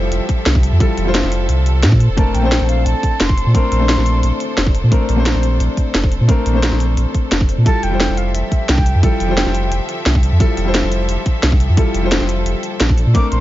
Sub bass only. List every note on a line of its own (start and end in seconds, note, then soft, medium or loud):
0.00 0.10 F1 medium
0.12 0.20 F1 loud
0.46 0.71 C2 medium
0.72 0.79 F2 loud
0.97 1.22 F1 loud
1.24 1.48 F1 medium
1.49 1.85 C2 medium
1.83 2.08 A#2 loud
2.09 2.33 F1 medium
2.34 2.59 A#1 loud
2.61 2.85 A#1 medium
2.86 2.94 A#1 loud
3.20 3.45 F1 medium
3.46 3.54 A#2 loud
3.72 3.96 A#1 loud
3.98 4.22 A#1 medium
4.23 4.31 A#1 loud
4.57 4.82 F1 medium
4.84 4.91 A#2 loud
5.09 5.34 A#1 loud
5.35 5.59 A#1 medium
5.60 5.68 A#1 loud
5.94 6.19 F1 medium
6.21 6.28 A#2 loud
6.46 6.71 A#1 loud
6.72 6.96 A#1 medium
6.97 7.05 A#1 loud
7.31 7.56 F1 medium
7.58 7.65 A#2 medium
7.83 8.08 F1 loud
8.09 8.33 F1 medium
8.34 8.43 F1 loud
8.69 8.94 C2 medium
8.95 9.02 F2 loud
9.20 9.45 F1 loud
9.46 9.70 F1 medium
9.72 9.80 F1 loud
10.06 10.31 C2 medium
10.32 10.39 F2 medium
10.57 10.82 F1 loud
10.83 11.07 F1 medium
11.09 11.17 F1 loud
11.43 11.68 C2 medium
11.69 11.77 F2 medium
11.94 12.19 F1 loud
12.21 12.45 F1 medium
12.46 12.54 F1 loud
12.80 13.05 A#1 medium
13.06 13.14 A#2 loud
13.32 13.40 A#1 loud